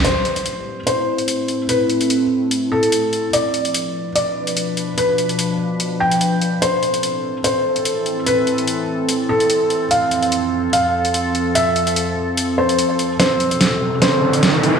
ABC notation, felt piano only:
X:1
M:4/4
L:1/8
Q:"Swing 16ths" 1/4=146
K:Am
V:1 name="Felt piano"
c4 c4 | B3 z2 A3 | d4 d4 | B3 z2 g3 |
c4 c4 | B3 z2 A3 | f4 f4 | e3 z2 c3 |
[Cc]4 [Cc]4 |]